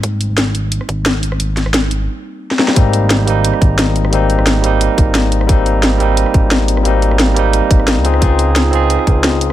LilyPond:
<<
  \new Staff \with { instrumentName = "Tine electric piano" } { \time 4/4 \key aes \major \tempo 4 = 176 <g bes c' ees'>1~ | <g bes c' ees'>2.~ <g bes c' ees'>8 <g bes c' ees'>8 | <g bes c' ees'>4. <g bes c' ees'>2~ <g bes c' ees'>8 | <g bes c' ees'>4. <g bes c' ees'>2~ <g bes c' ees'>8 |
<g bes c' ees'>4. <g bes c' ees'>2~ <g bes c' ees'>8 | <g bes c' ees'>4. <g bes c' ees'>2 <c' ees' f' aes'>8 | <c' ees' f' aes'>4. <c' ees' f' aes'>2~ <c' ees' f' aes'>8 | }
  \new Staff \with { instrumentName = "Analog synth bass" } { \clef bass \time 4/4 \key aes \major aes,,8. aes,,8. aes,,8. r16 aes,,8. aes,,8. | aes,,8. aes,,8. aes,,8 r2 | aes,,8. aes,,8. aes,,8. r16 aes,,8. aes,,8. | aes,,8. aes,,8. aes,,8. r16 aes,,8. aes,,8. |
aes,,8. aes,,8. aes,,8. r16 aes,,8. aes,,8. | aes,,8. aes,,8. aes,,8. r16 aes,,8. des,8. | des,8. des,8. des,8. r16 des,8. des,8. | }
  \new DrumStaff \with { instrumentName = "Drums" } \drummode { \time 4/4 <hh bd>8 hh8 <hh sn>8 hh8 hh16 ss16 <hh bd>8 <hh sn>8 hh16 ss16 | hh8 <hh sn>16 ss16 <hh sn>8 hh8 r4 r16 sn16 sn16 sn16 | <hh bd>8 hh8 <hh sn>8 hh8 hh16 ss16 <hh bd>8 <hh sn>8 hh16 ss16 | hh8 hh16 ss16 <hh sn>8 hh8 hh8 <hh bd>8 <hh sn>8 hh16 ss16 |
<hh bd>8 hh8 <hh sn>8 hh8 hh16 ss16 <hh bd>8 <hh sn>8 hh16 ss16 | hh8 hh16 ss16 <hh sn>8 hh8 hh8 <hh bd>16 ss16 <hh sn>8 hh16 ss16 | <hh bd>8 hh8 <hh sn>8 hh8 hh16 ss16 <hh bd>8 <hh sn>8 hh8 | }
>>